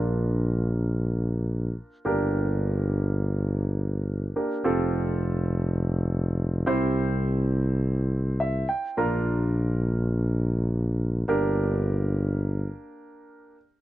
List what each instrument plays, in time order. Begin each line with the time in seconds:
Already playing: tuba A#1, grand piano A#3 D4 F4 A#4
2.05 tuba G1, grand piano A#3 D4 G4 A#4
4.36 grand piano A#3 D4 G4 A#4
4.64 tuba F1, grand piano C4 F4 G4 A4
6.66 tuba C2, grand piano C4 E4 G4 C5
8.40 grand piano E5
8.69 grand piano G5
8.97 tuba A#1, grand piano A#3 D4 F4 A#4 A#5
11.28 tuba G1, grand piano A#3 D4 G4 A#4